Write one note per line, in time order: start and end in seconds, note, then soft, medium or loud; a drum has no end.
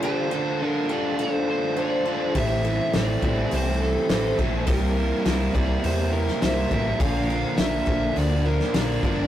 0.00 0.59 D3 loud
0.00 0.33 D4 loud
0.00 0.31 G4 loud
0.00 1.77 C5 medium
0.00 0.67 C5 medium
0.04 0.61 A3 medium
0.04 0.31 F4 medium
0.04 0.31 A4 loud
0.31 0.60 D4 medium
0.31 0.61 F4 medium
0.31 0.62 A4 medium
0.31 0.89 A4 medium
0.61 1.75 D3 medium
0.61 1.77 A3 medium
0.61 1.50 D4 medium
0.61 1.48 F4 medium
0.61 1.47 A4 medium
0.67 0.93 A#4 medium
0.89 1.77 D4 medium
0.89 1.78 F4 medium
0.89 1.18 G4 medium
0.89 1.78 A4 medium
0.89 1.21 D5 medium
1.19 1.77 A4 medium
1.19 1.49 C5 medium
1.48 1.76 D4 medium
1.48 1.77 F4 medium
1.48 1.78 A4 medium
1.48 1.79 C5 medium
1.76 2.33 D3 medium
1.76 2.34 A3 medium
1.76 2.07 D4 medium
1.76 2.06 F4 medium
1.76 2.04 A4 medium
1.76 4.10 C5 medium
1.76 2.37 D5 medium
2.05 2.35 D4 medium
2.05 2.34 F4 medium
2.05 2.33 A4 medium
2.05 2.35 A4 medium
2.35 2.78 A1 medium
2.35 2.93 A2 loud
2.35 4.67 E3 medium
2.35 2.66 A3 medium
2.35 2.66 C4 medium
2.35 2.65 E4 loud
2.35 2.64 G4 loud
2.35 2.63 A4 medium
2.35 2.96 E5 loud
2.35 kick loud
2.35 open hi-hat medium
2.64 2.92 A3 medium
2.64 2.94 C4 medium
2.64 2.94 E4 medium
2.64 2.94 A4 medium
2.64 3.23 A4 medium
2.93 3.15 A1 medium
2.93 4.09 E3 medium
2.93 3.81 A3 medium
2.93 3.80 C4 medium
2.93 3.80 E4 medium
2.93 3.79 A4 medium
2.93 3.55 D5 medium
2.93 snare loud
2.93 open hi-hat soft
3.22 3.44 A1 medium
3.22 4.09 A3 medium
3.22 4.10 C4 medium
3.22 4.10 E4 medium
3.22 3.51 G4 medium
3.22 kick medium
3.51 3.95 C2 medium
3.51 4.09 G4 medium
3.51 3.80 C5 medium
3.51 open hi-hat medium
3.80 4.08 A3 medium
3.80 4.09 C4 medium
3.80 4.09 E4 medium
3.80 4.10 A4 medium
3.80 4.36 A4 medium
4.09 4.31 A1 medium
4.09 4.66 E3 medium
4.09 4.39 A3 medium
4.09 4.38 C4 medium
4.09 4.38 E4 medium
4.09 4.37 A4 medium
4.09 4.38 C5 medium
4.09 snare loud
4.09 open hi-hat medium
4.38 4.68 A#1 medium
4.38 4.67 A3 medium
4.38 4.66 C4 medium
4.38 4.66 E4 medium
4.38 4.66 A4 medium
4.38 kick medium
4.67 5.10 C2 medium
4.67 5.25 C3 medium
4.67 5.26 E3 medium
4.67 4.97 G3 medium
4.67 4.98 A#3 medium
4.67 4.97 C4 loud
4.67 4.96 E4 loud
4.67 4.96 G4 loud
4.67 5.21 A#4 loud
4.67 4.96 A#4 loud
4.67 kick loud
4.67 open hi-hat medium
4.96 5.24 G3 medium
4.96 5.27 A#3 medium
4.96 5.25 C4 medium
4.96 5.25 E4 medium
4.96 5.27 A#4 medium
5.25 5.47 C2 medium
5.25 5.84 C3 medium
5.25 6.14 G3 medium
5.25 5.56 A#3 medium
5.25 6.13 C4 medium
5.25 6.12 E4 medium
5.25 6.12 A#4 medium
5.25 snare loud
5.25 open hi-hat medium
5.54 5.76 C2 medium
5.54 6.42 G3 medium
5.54 6.44 A#3 medium
5.54 6.43 E4 medium
5.54 5.83 G4 medium
5.54 5.84 D5 medium
5.54 kick medium
5.84 6.27 E2 medium
5.84 6.42 G4 medium
5.84 6.12 C5 medium
5.84 open hi-hat medium
6.13 6.40 G3 medium
6.13 6.41 C4 medium
6.13 6.41 E4 medium
6.13 6.43 A#4 medium
6.27 snare soft
6.41 6.64 C2 medium
6.41 6.99 C3 medium
6.41 6.71 G3 medium
6.41 6.73 A#3 medium
6.41 6.71 C4 medium
6.41 6.70 E4 medium
6.41 6.70 A#4 medium
6.41 6.71 C5 medium
6.41 7.00 E5 medium
6.41 snare loud
6.41 open hi-hat medium
6.70 6.93 A1 loud
6.70 6.99 G3 medium
6.70 7.02 A#3 medium
6.70 6.99 C4 medium
6.70 6.98 E4 medium
6.70 7.00 A4 medium
6.70 7.00 A#4 medium
6.70 kick medium
6.98 7.43 A#1 medium
6.98 9.27 A#2 medium
6.98 7.58 D3 medium
6.98 9.27 F3 medium
6.98 7.30 A#3 medium
6.98 7.30 D4 loud
6.98 7.29 F4 loud
6.98 7.30 A4 loud
6.98 7.28 A#4 loud
6.98 7.58 F5 loud
6.98 kick loud
6.98 open hi-hat medium
7.28 7.59 F3 medium
7.28 7.56 A#3 medium
7.28 7.57 D4 medium
7.28 7.58 F4 medium
7.28 7.59 A#4 medium
7.28 7.86 A#4 medium
7.57 7.80 A#1 medium
7.57 8.17 D3 medium
7.57 7.89 F3 medium
7.57 8.46 A#3 medium
7.57 8.46 D4 medium
7.57 8.44 F4 medium
7.57 8.43 A#4 medium
7.57 8.18 E5 medium
7.57 snare loud
7.57 open hi-hat medium
7.86 8.09 A#1 medium
7.86 8.74 F3 medium
7.86 8.74 A#3 medium
7.86 8.75 D4 medium
7.86 8.66 A4 medium
7.86 kick loud
8.16 8.59 D2 medium
8.16 8.47 D5 loud
8.16 open hi-hat medium
8.45 8.71 A#3 medium
8.45 8.73 D4 medium
8.45 8.73 F4 medium
8.45 8.74 A#4 medium
8.45 8.75 A#4 medium
8.60 snare soft
8.72 8.96 A#1 medium
8.72 9.27 D3 medium
8.72 9.05 F3 medium
8.72 9.04 A#3 medium
8.72 9.04 D4 medium
8.72 9.02 F4 medium
8.72 9.01 A#4 medium
8.72 9.27 D5 medium
8.72 snare loud
8.72 open hi-hat medium
9.02 9.24 G1 medium
9.02 9.27 F3 medium
9.02 9.27 A#3 medium
9.02 9.27 D4 medium
9.02 9.27 F4 medium
9.02 9.27 A#4 medium
9.02 kick medium